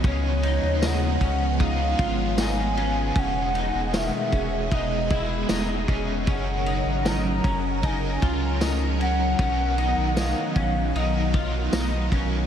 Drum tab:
RD |xxxxxxxx|xxxxxxxx|xxxxxxxx|xxxxxxxx|
TB |--x---x-|--x---x-|--x---x-|--x---x-|
SD |--o---o-|--o---o-|--o---o-|--o---o-|
BD |o--ooo--|o--ooo-o|o--ooo--|o--o-o-o|